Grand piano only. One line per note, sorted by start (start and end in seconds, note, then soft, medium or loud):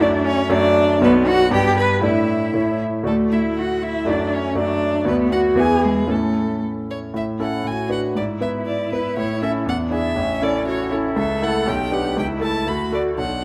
0.00 0.48 F#2 medium
0.00 0.48 A3 soft
0.00 0.48 F#4 soft
0.00 0.49 D5 soft
0.49 0.99 F#2 medium
0.49 1.00 A3 medium
0.49 1.00 F#4 soft
0.49 1.00 D5 medium
1.01 1.50 B1 medium
1.01 1.50 B3 medium
1.01 1.51 F#4 medium
1.01 1.51 D5 medium
1.51 2.01 G2 medium
1.51 2.01 B3 medium
1.51 2.01 G4 soft
1.51 2.02 D5 medium
2.02 2.52 A2 soft
2.02 2.53 A3 soft
2.02 2.53 D4 soft
2.02 2.53 D5 soft
2.54 3.04 A2 soft
2.54 3.02 A3 soft
2.54 3.04 E4 soft
2.54 3.04 C#5 soft
3.03 4.03 D2 soft
3.03 4.03 A3 soft
3.03 4.03 F#4 soft
3.03 4.04 D5 soft
4.04 4.54 F#2 soft
4.04 4.54 A3 soft
4.04 4.54 F#4 soft
4.04 4.55 D5 soft
4.55 5.05 F#2 soft
4.55 5.05 A3 soft
4.55 5.04 F#4 soft
4.55 5.05 D5 soft
5.05 5.55 D2 soft
5.05 5.54 B3 soft
5.05 5.55 F#4 soft
5.05 5.56 D5 soft
5.55 6.07 E2 soft
5.55 6.07 B3 soft
5.55 6.06 E4 soft
5.55 6.08 B4 soft
6.07 7.11 A2 soft
6.07 7.11 C#4 soft
6.07 7.11 E4 soft
6.07 7.11 A4 soft
7.14 7.39 A2 soft
7.40 7.63 C#4 soft
7.40 7.63 E4 soft
7.40 7.63 A4 soft
7.64 7.90 A2 soft
7.89 8.13 D4 soft
7.89 8.13 F#4 soft
7.89 8.13 B4 soft
8.15 8.40 G#2 soft
8.41 8.88 B3 soft
8.41 8.88 E4 soft
8.41 8.88 B4 soft
8.92 9.15 B3 soft
8.92 9.15 E4 soft
8.92 9.15 B4 soft
9.17 9.41 A2 soft
9.42 9.65 C#4 soft
9.42 9.65 E4 soft
9.42 9.65 A4 soft
9.66 9.91 E2 soft
9.91 10.14 D4 soft
9.91 10.14 E4 soft
9.91 10.15 G#4 soft
10.16 10.41 A1 medium
10.42 10.88 C#4 soft
10.42 10.88 E4 soft
10.42 10.89 A4 soft
10.92 11.15 C#4 soft
10.92 11.15 E4 soft
10.92 11.15 A4 soft
11.16 11.41 C#2 medium
11.42 11.65 A3 soft
11.42 11.65 E4 soft
11.42 11.65 A4 soft
11.67 11.91 B1 medium
11.91 12.14 B3 soft
11.91 12.15 D4 soft
11.91 12.15 G4 soft
12.17 12.41 C#2 soft
12.40 12.64 A3 soft
12.40 12.64 E4 soft
12.40 12.64 A4 soft
12.67 12.92 D2 soft
12.92 13.15 A3 soft
12.92 13.16 F#4 soft
12.92 13.15 A4 soft
13.18 13.43 B1 soft